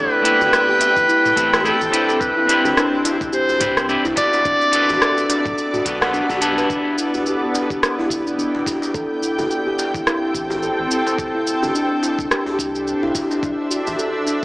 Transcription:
Already playing: A3 C4 E4 G4 A4 B4 D5 G5
0.20 A3 C4 E4 A4
0.24 E4 G4 B4, closed hi-hat, shaker
0.40 G1 A4, djembe bass, shaker
0.53 cross-stick, shaker
0.69 G4
0.81 closed hi-hat, djembe slap, djembe tone, shaker
0.96 A1 E4, kick, shaker
1.09 E4, shaker
1.25 mid tom, shaker
1.36 A1 A3 C4 E4 G4 B4, kick, closed hi-hat, shaker
1.53 cross-stick, djembe slap, djembe bass, shaker
1.64 A3 C4 E4 G4 A4 B4, shaker
1.81 A1, djembe tone, shaker
1.91 C4 D4 E4 G4 B4, closed hi-hat, shaker
2.09 A4, djembe slap, shaker
2.21 C2 B4, kick, shaker
2.37 E4
2.47 C4 D4 E4 G4 B4 D5, closed hi-hat, shaker
2.65 G1 D4, djembe bass, shaker
2.77 D4, cross-stick, shaker
3.01 E4 E5, closed hi-hat
3.05 djembe slap, djembe tone, shaker
3.21 C2, kick, shaker
3.33 G4 C5, shaker
3.49 djembe bass, shaker
3.60 C2 C4 D4 E4 G4 B4, kick, closed hi-hat, mid tom, shaker
3.77 G4, cross-stick, shaker
3.88 C4 D4 E4 G4 B4, shaker
4.05 C2 E4, djembe slap, djembe tone, shaker
4.16 B3 D4 F#4 A4 B4 D5, kick, closed hi-hat, djembe slap, djembe bass, shaker
4.33 D4, djembe slap, shaker
4.45 B1 B3 D4, kick, shaker
4.61 A4, shaker
4.72 B3 D4 F#4 A4 B4, closed hi-hat, shaker
4.89 A1, djembe tone, djembe bass, shaker
4.94 F#5
5.01 A4, cross-stick, shaker
5.18 shaker
5.29 D4, closed hi-hat, djembe slap, djembe tone, shaker
5.46 B1 A4, kick, mid tom, shaker
5.58 shaker
5.74 F#4, mid tom, shaker
5.85 B1 B3 D4 F#4 A4 B4, kick, closed hi-hat, shaker
6.01 B3 D4 F#4 A4 B4 F#5, cross-stick, djembe slap, djembe bass, shaker
6.14 D4, shaker
6.29 B1 B3 D4 F#4 A4 B4, kick, djembe tone, djembe bass, shaker
6.41 B3 D4 E4 G4 B4 A5, closed hi-hat, djembe tone, shaker
6.58 B4, djembe slap, shaker
6.70 E1 D4 E4, kick, shaker
6.87 djembe tone
6.98 E4 G5, djembe tone, shaker
7.14 D1, djembe bass, shaker
7.26 G4, shaker
7.54 D4, djembe slap, shaker
7.70 E1 G4, kick, djembe tone, shaker
7.83 cross-stick, shaker
7.99 E4, djembe bass
8.10 E1, kick, shaker
8.26 D4, shaker
8.38 D4, shaker
8.55 E1, djembe slap
8.66 E4, kick, djembe slap, djembe tone, djembe bass, shaker
8.82 djembe slap, shaker
8.94 A1 C4 A4, kick, shaker
9.00 A4
9.22 E4, shaker
9.38 G1 A4, djembe bass, shaker
9.51 shaker
9.67 G4
9.79 djembe slap, shaker
9.94 A1 E4, kick, shaker
10.07 E4, cross-stick, shaker
10.35 A1, kick, shaker
10.50 djembe slap, djembe bass, shaker
10.63 A4, shaker
10.79 A1
10.91 E4, shaker
11.06 A4, djembe slap, shaker
11.18 C2 D4, kick, shaker
11.35 E4, djembe tone
11.47 djembe tone, shaker
11.63 G1 D4, djembe bass, shaker
11.75 D4 C5, shaker
12.03 E4, djembe slap, shaker
12.11 E5
12.19 C2, kick, djembe tone, shaker
12.31 G4, cross-stick, shaker
12.46 djembe bass
12.59 C2 D4, kick, shaker
12.75 G4, shaker
12.87 shaker
13.03 C2 E4, djembe slap
13.15 kick, djembe slap, djembe tone, djembe bass, shaker
13.31 D4, djembe slap, shaker
13.43 B1 D4, kick, shaker
13.55 A4
13.71 F#4, shaker
13.87 A1, djembe bass, shaker
13.98 A4, shaker
14.26 D4, djembe slap, shaker

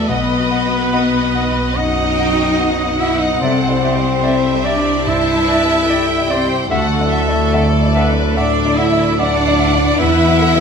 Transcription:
Already playing: B2 E3 B3 E4 F#4 B4
0.08 B1 B2 B3 B4 D#5 F#5
0.37 B3 F#4 D#5
0.50 B3 B4 D#5 F#5
0.65 B3 F#4 D#5
0.92 B3 D#4 F#4 D#5 F#5
1.20 B3 F#4 D#5
1.34 F#3 D#5 F#5
1.48 B3 F#4 D#5
1.76 F#2 F#3 B3 D#4 D#5 F#5
2.04 B3 F#4 D#5
2.17 F#3 D#5 F#5 G5
2.32 B3 F#4 D#5
2.59 B3 F#4 D#5 F#5
2.86 B3 F#4 D#5
2.99 F#3 E4 D#5 E5 F#5
3.14 B3 F#4 D#5
3.20 D#4 D#5
3.40 C2 C3 C4 A4 C5 D5 E5
3.67 G3 E4 D5
3.82 G3 G4 D5 E5
3.96 G3 E4 D5
4.23 G3 E4 A4 D5 E5
4.51 G3 E4 D5
4.64 C4 D4 G4 D5 E5
4.78 G3 E4 D5
5.05 G2 G3 E4 C5 D5 E5 A5
5.35 G3 E4 D5
5.47 C4 B4 D5 E5
5.63 G3 E4 D5
5.88 G3 E4 A4 D5 E5 G5
6.18 G3 E4 D5
6.29 C4 G4 C5 D5 E5
6.44 G3 E4 D5
6.70 D2 D3 A3 F#4 A4 E5 F#5
7.00 F#3 E4 D5
7.11 F#3 E5 F#5
7.27 F#3 E4 D5
7.52 F#3 E4 A4 D5 E5 F#5
7.83 F#3 E4 D5
7.94 D4 B4 E5 F#5
8.10 F#3 E4 D5
8.36 A2 F#3 D4 A4 D5 E5 F#5
8.65 F#3 E4 D5
8.77 D4 E4 E5 F#5
8.92 F#3 E4 D5
9.18 F#3 D4 E4 D5 E5 F#5
9.47 F#3 E4 D5
9.59 D4 E5 F#5
9.74 F#3 E4 D5
9.98 E2 E3 E4 B4 E5 F#5
10.27 F#3 E4 B4
10.40 E4 A4 B4 F#5
10.55 F#3 E4 B4

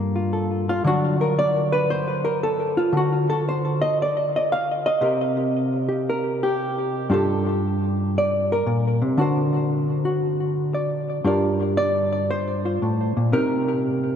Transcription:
Already playing: G2 G3 A#3 F4 A4
0.16 F4
0.33 A4
0.69 F4
0.84 D3 F#3 D4 F#4
1.21 A#4
1.39 D5
1.72 B4
1.90 C5
2.25 A#4
2.43 A4
2.77 F4
2.93 D3
2.97 F#4
3.30 A4
3.49 C5
3.82 D#5
4.02 D5
4.36 D#5
4.52 F5
4.86 D#5
5.01 C3 C4 G4 A#4
5.89 G4
6.10 A#4
6.43 G4
7.10 G2 D4 F4 G4 A4
8.18 D5
8.52 A#4
8.66 A#2
9.02 C3
9.17 D3 D4 F#4 C5
10.05 F#4
10.74 D5
11.24 G2 D4 F4 A#4 D5
11.77 D5
12.30 C5
12.65 F4
12.82 A2
13.17 A#2
13.32 C3 D#4 G4 A#4

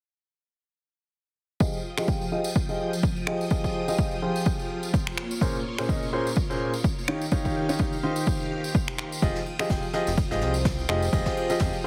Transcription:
1.60 F3 F4 G4 G#4 D#5 G5 D#6, kick, tambourine
1.73 tambourine
1.98 F3 F4 G4 G#4 D#5, finger snap, tambourine
2.05 F3 C5, kick, tambourine
2.21 tambourine
2.32 F3 F4 G4 G#4 D#5
2.44 tambourine
2.55 kick, tambourine
2.69 F3 F4 G4 G#4 D#5, tambourine
2.93 tambourine
3.03 kick, tambourine
3.16 tambourine
3.27 F3 F4 G4 G#4 D#5, finger snap
3.41 tambourine
3.50 F3 F4 G4 G#4 D#5, kick, tambourine
3.64 kick, tambourine
3.88 F3 F4 G4 G#4 D#5, tambourine
3.98 F4 G#4, kick, tambourine
4.11 tambourine
4.22 F3 F4 G4 G#4 C5
4.36 tambourine
4.46 kick, tambourine
4.59 tambourine
4.83 tambourine
4.94 kick, tambourine
5.07 finger snap, tambourine
5.17 A#3 A#4 C#5 C6, finger snap
5.31 F5, tambourine
5.41 A#2 C#4 G#4 A#4 C5, kick, tambourine
5.55 tambourine
5.78 A#2 C#4 G#4 A#4 C5, finger snap, tambourine
5.88 A#2 C#4 G#4 A#4 C#5 D#5, kick, tambourine
6.03 tambourine
6.13 A#2 C#4 G#4 A#4 C5
6.27 tambourine
6.36 kick, tambourine
6.50 A#2 C#4 G#4 A#4 C5, tambourine
6.74 tambourine
6.84 kick, tambourine
6.98 tambourine
7.08 D#3 D#4 F4 G4 C#5 F5, finger snap
7.20 G5, tambourine
7.31 D#3 D#4 F4 G4 C#5, kick, tambourine
7.45 kick, tambourine
7.69 D#3 D#4 F4 G4 C#5, tambourine
7.79 D#3 D#4 F4 C#5, kick, tambourine
7.93 tambourine
8.03 D#3 D#4 F4 G4 C5
8.16 tambourine
8.27 kick, tambourine
8.40 tambourine
8.64 tambourine
8.75 kick, tambourine
8.88 finger snap, tambourine
8.98 finger snap
9.12 tambourine
9.22 F1 F3 F4 G4 G#4 D#5 G5 D#6, kick, ride, tambourine
9.35 snare, tambourine
9.42 C5, ride
9.59 F3 F4 G4 G#4 D#5, finger snap, tambourine
9.69 F1 F3 F4 G4 G#4 G5, kick, snare, ride, tambourine
9.83 tambourine
9.93 F3 F4 G4 G#4 D#5, snare, ride
10.07 F1, snare, tambourine
10.17 kick, ride, tambourine
10.31 G#1 F3 F4 G4 G#4 D#5, snare, tambourine
10.41 C2, snare, ride
10.54 tambourine
10.65 kick, snare, ride, tambourine
10.79 tambourine
10.89 F1 F3 F4 G4 G#4 D#5, finger snap, snare, ride
11.02 tambourine
11.13 F1 F3 F4 G4 G#4 D#5, kick, ride, tambourine
11.26 kick, snare, tambourine
11.37 ride
11.50 F3 F4 G4 G#4 D#5, tambourine
11.60 F1, kick, snare, ride, tambourine
11.73 tambourine

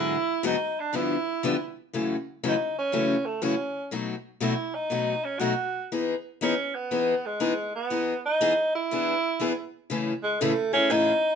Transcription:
Already playing: G#2 D3 F#3 B3 E4 F#4 G#4
0.43 G#2 D3 F#3 B3 D#4 F#4 G#4
0.80 D4
0.93 G2 D3 F3 B3 D4 E4 G4
1.43 G2 D3 F3 B3 D4 G4
1.93 F#2 C#3 E3 A3 C#4 F#4
2.43 F#2 C#3 E3 A3 C#4 F#4
2.48 D#4
2.78 C#4
2.92 F#2 C#3 E3 A3 C#4 F#4
3.26 A3
3.42 F#2 C#3 E3 A3 C#4 F#4
3.91 B2 F#3 A3 D#4 F#4
4.40 B2 F#3 A3 D#4 E4 F#4
4.75 D#4
4.90 B2 F#3 A3 D#4 F#4
5.24 C#4
5.39 B2 F#3 A3 D#4 F#4
5.92 E3 B3 D#4 G#4
6.41 E3 B3 C#4 D#4 G#4
6.75 B3
6.91 E3 B3 D#4 G#4
7.26 G#3
7.40 E3 B3 D#4 G#4
7.75 B3
7.90 E3 B3 D#4 G#4
8.26 D#4
8.41 E3 B3 D#4 G#4
8.75 E4
8.91 E3 B3 D4 G#4
9.40 E3 B3 D4 G#4
9.90 A2 C#3 E3 A3 C#4 G#4
10.23 G#3
10.40 A2 C#3 E3 A3 C#4 G#4
10.73 E3 A3 C#4 G#4
10.90 A2 C#3 E3 A3 C#4 D#4 G#4

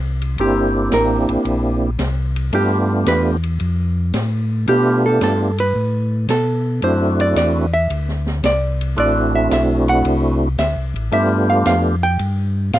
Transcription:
Already playing: C2
0.22 ride
0.38 G1 A#3 C4 D4 E4 G4, ride
0.92 A1 A#4, snare, hi-hat pedal, ride
1.29 A1, ride
1.45 A#1, ride
1.99 C2, snare, hi-hat pedal, ride
2.36 ride
2.53 G2 A3 B3 D4 F4 G4, ride
3.06 E2 B4, snare, hi-hat pedal, ride
3.43 ride
3.60 F2, ride
4.14 A2, snare, hi-hat pedal, ride
4.67 B2 A3 B3 D4 F4 G4, ride
5.06 A4
5.21 G2 A4, snare, hi-hat pedal, ride
5.58 B4, ride
5.75 A2
6.29 B2 A4, snare, hi-hat pedal, ride
6.82 F#2 A3 C4 D4 E4 F#4 C5, ride
7.20 D5, ride
7.36 E2 D5, snare, hi-hat pedal, ride
7.73 E5, ride
7.90 D2, ride
8.09 snare
8.26 snare
8.43 C2 D5, snare, hi-hat pedal, ride
8.81 ride
8.97 A1 A3 C4 D4 E4 F#4 D5, ride
9.35 E5
9.51 B1 E5, snare, hi-hat pedal, ride
9.88 F#5, ride
10.04 C2, ride
10.58 D2 E5, snare, hi-hat pedal, ride
10.76 C2
10.94 A1, ride
11.12 G2 A3 B3 D4 F4 G4 E5, ride
11.50 F5
11.66 F2 F5, snare, hi-hat pedal, ride
12.03 G5, ride
12.19 G2, ride
12.73 A2 F5, snare, hi-hat pedal, ride

